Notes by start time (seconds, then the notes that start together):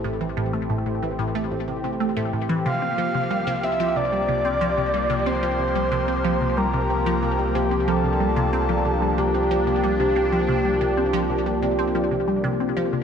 Already playing: A1 E3 A3 C4 G4
0.04 A2
0.21 E3
0.37 A2
0.53 A3
0.70 A2
0.86 A2
1.03 E3
1.19 A2
1.35 A3
1.51 A2
1.68 C3
1.84 C3
2.00 A3
2.17 A2
2.33 A2
2.49 E3
2.66 C2 C3 F3 A#3 F5
2.82 C4
2.98 F3
3.15 C3
3.31 G3
3.47 C3
3.63 C4 E5
3.80 F3
3.96 C3 D5
4.12 G3
4.28 C3
4.45 C4
4.61 F3
4.78 C3
4.94 G3
5.10 C3
5.26 C4 C5
5.43 F3
5.59 C3
5.75 G3
5.92 C3
6.08 C4
6.24 F3
6.41 C3
6.57 G3 A#4
6.74 C3
6.90 C4
7.06 F3
7.23 C3
7.39 G3
7.55 C3 G4
7.71 C4
7.88 F3 D4 A4
8.04 C3
8.20 G3
8.36 C3
8.53 C4
8.69 F3
8.85 C3
9.02 G3
9.18 C3 G4
9.34 C4
9.51 F3
9.67 C3
9.84 G3
10.00 C3
10.16 C4
10.32 F3
10.49 C3
10.65 G3
10.81 C3
10.97 C4
11.13 F3
11.30 C3
11.46 G3
11.62 C3
11.79 C4
11.95 F3
12.11 C3
12.28 G3
12.44 C3
12.60 C4
12.77 F3
12.93 C3